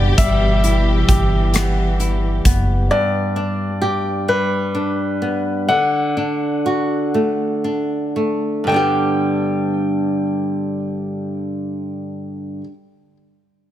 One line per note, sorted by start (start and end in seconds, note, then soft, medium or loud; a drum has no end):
0.00 0.15 F#1 medium
0.00 2.86 B2 medium
0.00 0.15 D3 medium
0.00 0.17 G3 medium
0.00 1.54 B3 soft
0.00 0.27 D4 soft
0.00 1.08 G4 soft
0.00 2.86 G4 medium
0.00 0.19 D5 medium
0.18 1.05 G1 medium
0.18 2.88 E3 medium
0.18 3.68 G3 medium
0.18 2.41 E5 medium
0.18 kick medium
0.18 closed hi-hat medium
0.64 1.98 E4 soft
0.64 closed hi-hat soft
1.08 2.41 G1 medium
1.08 3.81 G4 medium
1.08 kick medium
1.08 closed hi-hat medium
1.54 2.45 B3 medium
1.54 cross-stick medium
1.54 closed hi-hat medium
2.00 2.99 E4 soft
2.00 closed hi-hat soft
2.45 2.88 F#1 medium
2.45 5.21 B3 soft
2.45 kick medium
2.45 closed hi-hat medium
2.91 5.68 G2 medium
2.91 4.32 D5 medium
3.36 4.74 D4 soft
3.82 5.78 G4 medium
4.28 5.68 G3 soft
4.28 5.73 B4 medium
4.75 6.16 D4 soft
5.22 5.78 B3 soft
5.68 8.67 D3 medium
5.68 8.11 F#5 medium
6.17 7.64 D4 soft
6.66 8.76 F#4 soft
7.14 8.15 A3 soft
7.64 8.74 D4 soft
8.16 8.71 A3 soft
8.64 12.61 G2 soft
8.64 12.64 D3 medium
8.64 12.61 G5 medium
8.69 12.66 G3 soft
8.69 12.69 B3 medium
8.74 12.71 D4 medium
8.74 12.73 G4 medium